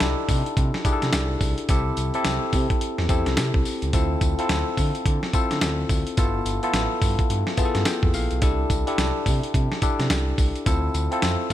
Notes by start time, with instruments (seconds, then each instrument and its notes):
Already playing: tine electric piano D4 D#4 E4 G4 A4
0.00 analog synth bass C2, snare, closed hi-hat, tambourine
0.28 analog synth bass C3, kick, open hi-hat, tambourine
0.46 closed hi-hat
0.57 analog synth bass C3, kick, closed hi-hat
0.74 snare
0.85 analog synth bass C3, tine electric piano D4 E4 G4 G#4, kick, closed hi-hat, tambourine
0.93 tine electric piano A4
1.02 analog synth bass C3, snare, closed hi-hat
1.13 analog synth bass C2, snare, closed hi-hat, tambourine
1.41 analog synth bass C2, kick, open hi-hat, tambourine
1.58 closed hi-hat
1.69 analog synth bass C2, tine electric piano C4 E4 G4 A4, kick, closed hi-hat, tambourine
1.97 analog synth bass C2, closed hi-hat, tambourine
2.14 tine electric piano C4 E4 G4 A4, closed hi-hat
2.25 analog synth bass C2, snare, closed hi-hat, tambourine
2.53 analog synth bass C3, kick, open hi-hat, tambourine
2.70 kick, closed hi-hat
2.81 closed hi-hat
2.98 analog synth bass E2, snare
3.09 analog synth bass E2, tine electric piano C4 E4 G4 A4, kick, closed hi-hat, tambourine
3.26 analog synth bass C2, snare, closed hi-hat
3.37 analog synth bass C3, snare, closed hi-hat, tambourine
3.54 analog synth bass C2, kick
3.65 open hi-hat, tambourine
3.82 analog synth bass C#2, closed hi-hat
3.93 analog synth bass D2, tine electric piano C4 E4 F4 A4, kick, closed hi-hat, tambourine
4.21 analog synth bass D2, kick, closed hi-hat, tambourine
4.39 tine electric piano C4 E4 F4 A4, closed hi-hat
4.49 analog synth bass D2, snare, closed hi-hat, tambourine
4.77 analog synth bass D3, kick, open hi-hat, tambourine
4.95 closed hi-hat
5.06 analog synth bass D3, kick, closed hi-hat
5.23 snare
5.33 analog synth bass D3, tine electric piano C4 E4 F4 A4, kick, closed hi-hat, tambourine
5.51 analog synth bass D3, snare, closed hi-hat
5.61 analog synth bass D2, snare, closed hi-hat, tambourine
5.89 analog synth bass D2, kick, open hi-hat, tambourine
6.07 closed hi-hat
6.17 analog synth bass G1, tine electric piano B3 E4 F4 A4, kick, closed hi-hat, tambourine
6.45 analog synth bass G1, closed hi-hat, tambourine
6.63 tine electric piano B3 E4 F4 A4, closed hi-hat
6.74 analog synth bass A1, snare, closed hi-hat, tambourine
7.02 analog synth bass G2, kick, open hi-hat, tambourine
7.19 kick, closed hi-hat
7.30 analog synth bass G2, closed hi-hat
7.47 snare
7.57 analog synth bass G2, tine electric piano B3 E4 F4 G#4 A5, kick, closed hi-hat, tambourine
7.65 tine electric piano A4
7.75 analog synth bass G2, snare, closed hi-hat
7.85 tine electric piano G5, snare, closed hi-hat, tambourine
8.03 analog synth bass F2, kick
8.14 analog synth bass A#1, tine electric piano F5, open hi-hat, tambourine
8.31 analog synth bass B1, closed hi-hat
8.42 analog synth bass C2, tine electric piano D4 E4 G4 A4, kick, closed hi-hat, tambourine
8.70 analog synth bass C2, kick, closed hi-hat, tambourine
8.87 tine electric piano D4 E4 G4 A4, closed hi-hat
8.98 analog synth bass C2, snare, closed hi-hat, tambourine
9.26 analog synth bass C3, kick, open hi-hat, tambourine
9.43 closed hi-hat
9.54 analog synth bass C3, kick, closed hi-hat
9.72 snare
9.82 analog synth bass C3, tine electric piano D4 E4 G4 A4, kick, closed hi-hat, tambourine
9.99 analog synth bass C3, snare, closed hi-hat
10.10 analog synth bass C2, snare, closed hi-hat, tambourine
10.38 analog synth bass C2, kick, open hi-hat, tambourine
10.55 closed hi-hat
10.66 analog synth bass D2, tine electric piano C4 E4 F4 A4, kick, closed hi-hat, tambourine
10.94 analog synth bass D2, closed hi-hat, tambourine
11.12 tine electric piano C4 E4 F4 A4, closed hi-hat
11.22 analog synth bass F2, snare, closed hi-hat, tambourine